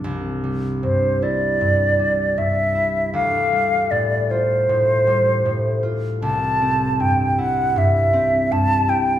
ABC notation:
X:1
M:4/4
L:1/8
Q:1/4=78
K:C
V:1 name="Flute"
z2 c d3 e2 | f2 d c4 z | a2 g ^f e2 a g |]
V:2 name="Harp" clef=bass
[C,,D] G, G,, E G,, G, G,, E | D,, G, A,, F A,, G, A,, F | C,, C G,, E G,, C G,, E |]